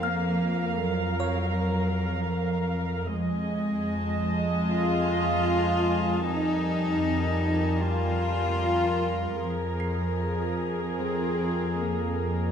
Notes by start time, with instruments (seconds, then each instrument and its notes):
Already playing: double bass section F2, synth drone F2, viola section F5
0.03 cello section A#3, viola section A#4, music box F6
0.81 cello section F#3
1.20 music box C#5 C#6
3.13 double bass section F2, synth drone F2, viola section G#3 D#5, cello section G#3, violin section G#5
3.94 violin section A5
4.73 cello section F4
6.28 viola section G3 A#4, cello section D#4
7.85 cello section F4
9.41 double bass section F2, synth drone F2, cello section F3, viola section G#4
9.80 music box C7
11.00 cello section C4
11.80 cello section A#3